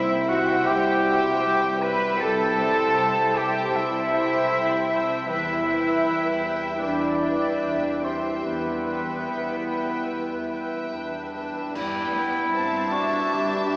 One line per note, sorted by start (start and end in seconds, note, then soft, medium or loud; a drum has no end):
0.00 0.59 C2 medium
0.00 2.19 C3 medium
0.00 1.62 G3 soft
0.00 2.17 G3 medium
0.00 1.81 C4 medium
0.00 0.10 E4 soft
0.00 0.26 E4 loud
0.00 2.18 E4 medium
0.00 0.29 C5 medium
0.00 0.29 E5 medium
0.00 0.30 E5 medium
0.00 0.32 E5 loud
0.00 0.29 G5 medium
0.12 1.43 E4 medium
0.29 0.68 F#4 medium
0.29 1.04 C5 medium
0.29 1.04 E5 medium
0.29 0.68 E5 medium
0.29 0.69 F#5 medium
0.29 0.71 F#5 medium
0.29 1.04 G5 medium
0.50 0.87 G5 medium
0.67 1.35 C2 medium
0.67 1.82 G4 loud
0.67 1.05 E5 medium
0.67 1.84 G5 loud
0.67 1.82 G5 medium
0.88 3.54 G5 medium
1.06 1.81 C5 medium
1.06 1.81 E5 medium
1.06 3.35 E5 medium
1.06 1.81 G5 medium
1.44 2.12 C2 medium
1.44 2.78 E4 medium
1.63 2.01 G3 medium
1.82 2.39 C4 medium
1.82 2.58 C4 medium
1.82 2.20 B4 loud
1.82 2.57 E5 medium
1.82 2.58 G5 medium
1.82 2.22 B5 medium
1.82 2.23 B5 medium
2.02 2.57 G3 soft
2.20 2.89 C2 medium
2.20 5.31 C3 medium
2.20 5.11 G3 medium
2.20 5.11 E4 medium
2.20 3.37 A4 loud
2.20 3.39 A5 medium
2.40 4.89 C4 medium
2.58 4.69 G3 soft
2.58 3.35 C5 medium
2.58 3.34 E5 medium
2.58 3.35 G5 medium
2.79 3.16 E4 soft
2.98 3.65 C2 medium
2.98 4.30 G4 medium
3.17 4.49 E4 medium
3.35 3.74 G4 medium
3.35 4.12 C5 medium
3.35 4.11 E5 medium
3.35 3.74 E5 medium
3.35 4.11 G5 medium
3.35 3.78 G5 medium
3.35 3.77 G5 medium
3.55 3.92 G5 medium
3.75 4.42 C2 medium
3.75 5.27 E4 loud
3.75 4.11 E5 medium
3.75 5.27 E5 medium
3.75 5.28 E5 medium
3.94 7.83 G5 medium
4.12 4.89 C5 medium
4.12 6.24 E5 medium
4.12 4.88 E5 medium
4.12 4.88 G5 medium
4.31 8.21 G4 medium
4.51 5.19 C2 medium
4.51 5.66 E4 medium
4.70 5.08 G3 medium
4.90 5.31 C4 medium
4.90 5.28 C5 medium
4.90 5.28 E5 medium
4.90 5.27 G5 medium
5.09 5.46 G3 medium
5.28 5.96 E2 medium
5.28 8.43 E3 medium
5.28 8.41 G3 medium
5.28 6.80 E4 loud
5.28 8.41 E4 medium
5.28 5.66 B4 medium
5.28 6.52 E5 medium
5.28 6.53 E5 loud
5.28 5.67 E5 medium
5.28 5.66 G5 medium
5.47 8.02 G3 soft
5.67 6.04 E4 soft
5.67 6.43 B4 medium
5.67 6.43 E5 medium
5.67 6.43 G5 medium
6.05 6.74 E2 medium
6.05 7.81 E4 medium
6.44 7.22 B4 soft
6.44 7.21 E5 medium
6.44 7.21 G5 medium
6.44 10.35 B5 medium
6.64 7.02 E5 soft
6.83 7.53 E2 medium
6.83 8.01 D4 medium
6.83 8.06 D5 medium
7.04 7.41 E5 soft
7.23 8.02 B4 medium
7.23 8.01 E5 medium
7.23 8.02 G5 medium
7.42 9.48 E5 medium
7.62 8.35 E2 medium
7.83 8.23 E4 soft
8.02 8.64 G3 soft
8.02 8.45 C4 medium
8.02 8.85 G4 soft
8.02 8.45 C5 medium
8.02 8.84 E5 medium
8.02 8.86 G5 soft
8.24 8.86 E4 soft
8.45 9.19 E2 medium
8.45 11.77 E3 medium
8.45 11.37 G3 medium
8.45 10.93 B3 medium
8.45 11.37 E4 medium
8.45 10.89 B4 medium
8.45 10.90 B4 medium
8.65 11.33 G3 soft
8.86 9.27 E4 soft
8.86 9.69 B4 medium
8.86 9.67 E5 soft
8.86 9.69 G5 soft
9.28 10.01 E2 medium
9.28 11.13 E4 soft
9.49 9.90 E5 soft
9.69 10.51 B4 soft
9.69 10.50 E5 soft
9.69 10.50 G5 soft
9.91 10.30 E5 soft
10.11 10.83 E2 medium
10.32 10.72 E5 soft
10.51 11.33 B4 soft
10.51 11.32 E5 medium
10.51 11.32 G5 soft
10.73 11.78 E5 soft
10.93 11.65 E2 medium
10.93 11.77 D4 medium
11.14 11.53 E4 soft
11.34 13.77 G3 soft
11.34 11.74 B4 soft
11.34 11.74 E5 medium
11.34 11.74 G5 soft
11.55 11.77 E4 soft
11.74 13.77 G2 medium
11.74 12.11 G3 medium
11.74 12.50 B3 medium
11.74 12.93 E4 loud
11.74 12.12 D5 medium
11.74 12.50 G5 medium
11.74 concert bass drum medium
11.74 crash medium
12.14 12.53 B3 medium
12.14 12.54 B4 medium
12.53 12.91 C4 medium
12.53 12.93 C4 medium
12.53 13.77 E5 medium
12.53 13.77 A5 medium
12.92 13.77 D4 medium
12.92 13.32 D4 medium
12.92 13.35 F#4 medium
13.32 13.77 D3 medium
13.32 13.77 D4 medium
13.32 13.77 G4 loud